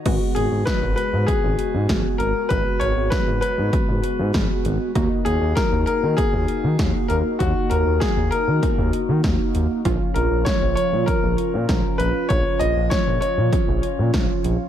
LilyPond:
<<
  \new Staff \with { instrumentName = "Grand piano" } { \time 4/4 \key aes \dorian \tempo 4 = 98 r8 aes'8 ces''8 ces''8 aes'4. bes'8 | ces''8 des''8 ces''8 ces''4 r4. | r8 aes'8 bes'8 bes'8 aes'4. bes'8 | ges'8 bes'8 aes'8 bes'4 r4. |
r8 bes'8 des''8 des''8 bes'4. ces''8 | des''8 ees''8 des''8 des''4 r4. | }
  \new Staff \with { instrumentName = "Analog polysynth" } { \time 4/4 \key aes \dorian <aes ces' ges'>1~ | <aes ces' ges'>1 | <bes ees' ges'>1~ | <bes ees' ges'>1 |
<f des' f'>1~ | <f des' f'>1 | }
  \new Staff \with { instrumentName = "Analog synth bass" } { \clef bass \time 4/4 \key aes \dorian aes,,16 r16 aes,,16 aes,,16 r16 aes,,16 r16 aes,16 r16 aes,,16 r16 aes,16 aes,,16 r16 aes,,16 r16 | aes,,16 r16 aes,,16 aes,,16 r16 aes,,16 r16 aes,16 r16 aes,,16 r16 aes,16 aes,,16 r16 aes,,16 r16 | ees,16 r16 ees,16 ees,16 r16 ees,16 r16 ees16 r16 ees,16 r16 ees16 ees,16 r16 ees,16 r16 | ees,16 r16 ees,16 ees,16 r16 ees,16 r16 ees16 r16 ees,16 r16 ees16 ees,16 r16 ees,16 r16 |
bes,,16 r16 bes,,16 bes,,16 r16 bes,,16 r16 bes,16 r16 bes,,16 r16 bes,16 bes,,16 r16 bes,,16 r16 | bes,,16 r16 bes,,16 bes,,16 r16 bes,,16 r16 bes,16 r16 bes,,16 r16 bes,16 bes,,16 r16 bes,,16 r16 | }
  \new DrumStaff \with { instrumentName = "Drums" } \drummode { \time 4/4 <cymc hh bd>8 hh8 <hh bd sn>8 hh8 <hh bd>8 hh8 <hh bd sn>8 hh8 | <hh bd>8 hh8 <hh bd sn>8 hh8 <hh bd>8 hh8 <hh bd sn>8 hh8 | <hh bd>8 hh8 <hh bd sn>8 hh8 <hh bd>8 hh8 <hh bd sn>8 hh8 | <hh bd>8 hh8 <hh bd sn>8 hh8 <hh bd>8 hh8 <hh bd sn>8 hh8 |
<hh bd>8 hh8 <hh bd sn>8 hh8 <hh bd>8 hh8 <hh bd sn>8 hh8 | <hh bd>8 hh8 <hh bd sn>8 hh8 <hh bd>8 hh8 <hh bd sn>8 hh8 | }
>>